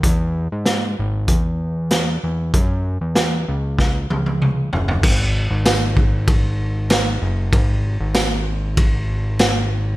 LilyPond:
<<
  \new Staff \with { instrumentName = "Analog synth bass" } { \clef bass \time 4/4 \key fis \mixolydian \tempo 4 = 96 e,8. gis,8. gis,,8 e,4. e,8 | fis,8. e,8. cis,4 cis,4 fis,,8 | gis,,8. gis,,2~ gis,,8. fis,,8 | gis,,8. gis,,2.~ gis,,16 | }
  \new DrumStaff \with { instrumentName = "Drums" } \drummode { \time 4/4 <hh bd>4 <hh sn>4 <hh bd>4 <hh sn>4 | <hh bd>4 <hh sn>4 <bd sn>8 tommh16 tommh16 toml8 tomfh16 tomfh16 | <cymc bd>4 <cymr sn tamb>8 bd8 <bd cymr>4 <cymr sn tamb>4 | <bd cymr>4 <cymr sn tamb>4 <bd cymr>4 <cymr sn tamb>4 | }
>>